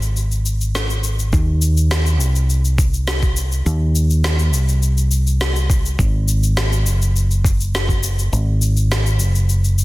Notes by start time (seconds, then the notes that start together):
Already playing: G#1
0.02 shaker
0.17 shaker
0.31 shaker
0.46 shaker
0.61 shaker
0.75 snare, shaker
0.90 shaker
1.04 shaker
1.19 shaker
1.33 D#2, kick, shaker
1.62 shaker
1.77 shaker
1.91 snare, shaker
2.06 shaker
2.20 C2, shaker
2.35 shaker
2.50 shaker
2.65 shaker
2.78 kick, shaker
2.94 shaker
3.08 snare, shaker
3.23 kick, shaker
3.37 shaker
3.52 shaker
3.66 D#2, shaker
3.96 shaker
4.10 shaker
4.24 snare, shaker
4.39 shaker
4.54 C2, shaker
4.69 shaker
4.83 shaker
4.98 shaker
5.11 shaker
5.27 shaker
5.41 snare, shaker
5.56 shaker
5.70 kick, shaker
5.85 shaker
5.99 G#1, kick, shaker
6.28 shaker
6.43 shaker
6.57 snare, shaker
6.73 shaker
6.86 F#1, shaker
7.02 shaker
7.16 shaker
7.31 shaker
7.45 kick, shaker
7.60 shaker
7.75 snare, shaker
7.89 kick, shaker
8.03 shaker
8.19 shaker
8.33 G#1, shaker
8.62 shaker
8.77 shaker
8.92 snare, shaker
9.06 shaker
9.20 F#1, shaker
9.35 shaker
9.49 shaker
9.64 shaker
9.79 shaker